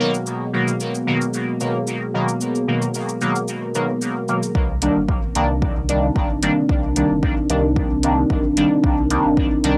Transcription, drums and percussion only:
0.14 cabasa soft
0.26 cabasa soft
0.68 cabasa soft
0.80 cabasa soft
0.94 cabasa soft
1.21 cabasa soft
1.34 cabasa soft
1.60 cabasa soft
1.87 cabasa soft
2.28 cabasa soft
2.41 cabasa soft
2.55 cabasa soft
2.82 cabasa soft
2.94 cabasa soft
3.09 cabasa soft
3.21 cabasa soft
3.36 cabasa soft
3.48 cabasa soft
3.75 cabasa soft
4.01 cabasa soft
4.28 cabasa soft
4.43 cabasa soft
4.55 kick loud
4.82 closed hi-hat medium
5.09 kick loud
5.35 closed hi-hat medium
5.62 kick loud
5.89 closed hi-hat medium
6.16 kick loud
6.43 closed hi-hat medium
6.69 kick loud
6.96 closed hi-hat medium
7.23 kick loud
7.50 closed hi-hat medium
7.76 kick loud
8.03 closed hi-hat medium
8.30 kick loud
8.57 closed hi-hat medium
8.84 kick loud
9.10 closed hi-hat medium
9.37 kick loud
9.64 closed hi-hat medium

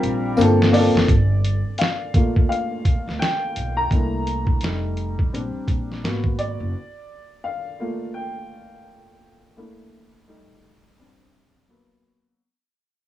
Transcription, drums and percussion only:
0.03 closed hi-hat medium
0.37 tambourine medium
0.41 closed hi-hat medium
0.62 snare medium
0.74 open hi-hat medium
0.97 snare medium
1.08 kick loud
1.08 closed hi-hat medium
1.44 closed hi-hat medium
1.78 snare medium
1.78 closed hi-hat medium
2.14 kick loud
2.14 closed hi-hat medium
2.36 kick medium
2.52 closed hi-hat medium
2.85 kick medium
2.85 closed hi-hat medium
3.09 snare soft
3.22 snare loud
3.22 closed hi-hat medium
3.56 closed hi-hat medium
3.91 kick loud
3.91 closed hi-hat medium
4.27 closed hi-hat medium
4.47 kick medium
4.61 snare medium
4.61 closed hi-hat medium
4.97 closed hi-hat medium
5.19 kick medium
5.35 closed hi-hat medium
5.68 kick medium
5.68 closed hi-hat medium
5.92 snare soft
6.05 snare loud
6.05 closed hi-hat medium
6.24 kick medium
6.39 closed hi-hat medium

